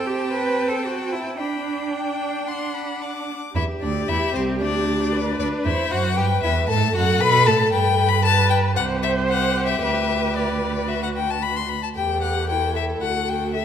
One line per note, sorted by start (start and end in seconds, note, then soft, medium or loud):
0.00 1.35 C4 medium
0.00 1.36 G5 medium
0.00 1.36 A5 medium
0.06 0.32 G4 medium
0.32 0.70 B4 medium
0.69 0.87 A4 medium
0.86 1.14 F#4 medium
1.12 1.41 E4 medium
1.39 2.46 D4 soft
1.39 3.29 D4 medium
1.39 2.50 G5 soft
1.39 1.87 B5 soft
1.94 2.49 G5 medium
2.47 3.34 D4 medium
2.47 3.36 F#5 medium
2.47 2.76 C6 medium
2.74 3.03 B5 medium
3.02 3.55 D6 medium
3.55 3.63 E2 medium
3.55 3.63 E4 medium
3.55 5.14 G4 medium
3.55 3.63 E5 medium
3.82 4.08 D2 medium
3.82 3.90 D4 medium
3.82 4.10 D5 medium
4.08 4.16 E2 medium
4.08 4.33 E4 medium
4.08 4.34 E5 medium
4.33 4.62 C2 medium
4.33 4.59 C4 medium
4.33 4.42 C5 medium
4.61 5.39 D2 medium
4.61 5.37 D4 medium
4.61 5.38 D5 medium
5.13 5.66 B4 medium
5.39 5.47 D2 medium
5.39 5.67 D4 medium
5.39 5.47 D5 medium
5.65 5.73 E2 medium
5.65 5.93 E4 medium
5.65 6.16 C5 medium
5.65 5.92 E5 medium
5.91 6.19 F#2 medium
5.91 6.16 F#4 medium
5.91 6.18 F#5 medium
6.17 6.42 G2 medium
6.17 6.25 G4 medium
6.17 6.71 B4 medium
6.17 6.42 G5 medium
6.43 6.68 E2 medium
6.43 6.52 E4 medium
6.43 6.68 E5 medium
6.69 6.94 A2 medium
6.69 6.94 A4 medium
6.69 8.23 A4 medium
6.69 6.94 A5 medium
6.95 7.21 F#2 medium
6.95 7.22 F#4 medium
6.95 7.22 F#5 loud
7.21 7.48 B2 medium
7.21 7.49 B4 loud
7.21 7.48 B5 loud
7.47 7.72 A2 medium
7.47 7.73 A4 medium
7.47 7.72 A5 medium
7.72 8.79 G2 medium
7.72 8.73 B4 medium
7.72 8.10 G5 loud
8.08 8.24 B5 loud
8.24 8.75 B4 medium
8.24 8.49 A5 loud
8.50 8.58 G5 medium
8.76 9.82 C2 medium
8.76 10.85 G4 medium
8.76 9.80 C5 medium
8.76 8.84 F#5 medium
9.03 9.11 E5 medium
9.30 9.64 F#5 medium
9.66 9.81 E5 medium
9.81 11.73 D2 medium
9.81 11.66 B4 medium
9.81 10.37 E5 medium
10.36 10.90 D5 medium
10.88 11.72 F#4 medium
10.88 11.02 E5 medium
11.03 11.08 F#5 medium
11.17 11.32 G5 medium
11.30 11.44 A5 medium
11.42 11.58 B5 medium
11.57 11.70 C6 medium
11.69 11.83 B5 medium
11.83 11.88 A5 medium
11.95 12.98 E2 medium
11.95 12.51 G4 medium
11.95 13.65 A4 medium
11.95 12.22 G5 medium
12.22 12.49 F#5 medium
12.49 13.03 E4 medium
12.49 12.75 G5 medium
12.76 12.84 E5 medium
13.02 13.65 D2 medium
13.02 13.56 F#4 medium
13.02 13.30 F#5 medium
13.29 13.54 G5 medium
13.54 13.65 A4 medium
13.54 13.65 E5 medium